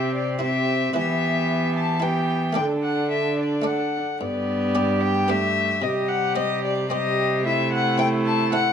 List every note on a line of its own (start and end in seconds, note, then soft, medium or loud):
0.00 0.92 C3 soft
0.00 0.95 C3 medium
0.00 0.41 C4 medium
0.00 0.37 E4 soft
0.00 0.42 G4 medium
0.00 0.38 C5 soft
0.00 0.14 E5 medium
0.15 0.40 D5 medium
0.39 0.96 C4 medium
0.39 0.92 E4 soft
0.39 0.95 G4 medium
0.39 0.93 C5 soft
0.39 0.94 E5 medium
0.94 2.59 E3 medium
0.94 2.53 E3 medium
0.94 2.03 B3 medium
0.94 1.99 E4 soft
0.94 2.01 G4 medium
0.94 1.99 B4 soft
0.94 1.74 E5 medium
1.76 2.03 A5 medium
2.00 2.58 B3 medium
2.00 2.54 E4 soft
2.00 2.56 G4 medium
2.00 2.55 B4 soft
2.00 2.56 G5 medium
2.53 3.96 D3 medium
2.53 3.61 A3 soft
2.53 3.61 A4 soft
2.53 3.62 D5 soft
2.53 2.64 G5 medium
2.57 4.01 D3 medium
2.57 3.66 D4 medium
2.57 3.64 A4 medium
2.83 3.10 F#5 medium
3.11 3.38 E5 medium
3.39 3.68 D5 medium
3.62 4.17 A3 soft
3.62 4.18 A4 soft
3.62 4.18 D5 soft
3.66 4.00 D4 soft
3.66 4.01 A4 medium
3.66 4.21 F#5 medium
4.21 5.85 G2 medium
4.21 5.79 G2 medium
4.21 5.30 B3 medium
4.21 5.79 G4 medium
4.21 5.02 D5 medium
4.75 5.14 B3 soft
4.75 5.14 G4 soft
4.75 5.14 D5 medium
5.01 5.31 G5 medium
5.28 5.83 A3 medium
5.28 5.67 B3 soft
5.28 5.68 G4 soft
5.28 5.68 D5 medium
5.28 5.85 E5 loud
5.82 8.73 C3 medium
5.82 6.89 G3 medium
5.82 6.89 G4 medium
5.82 6.10 D#5 medium
6.09 6.36 F#5 medium
6.36 6.75 C4 medium
6.36 6.75 G4 soft
6.36 6.75 C5 medium
6.36 6.63 D#5 medium
6.65 6.90 D5 medium
6.90 7.45 G3 medium
6.90 7.29 C4 medium
6.90 7.47 G4 medium
6.90 7.30 G4 medium
6.90 7.30 C5 medium
6.90 7.44 D#5 loud
7.44 8.73 A3 medium
7.44 8.73 E4 medium
7.44 7.71 E5 medium
7.73 7.98 F#5 medium
7.98 8.37 C4 medium
7.98 8.37 E4 medium
7.98 8.37 A4 medium
7.98 8.07 G5 medium
8.26 8.52 A5 loud
8.52 8.73 C4 medium
8.52 8.73 E4 medium
8.52 8.73 A4 medium
8.52 8.73 F#5 loud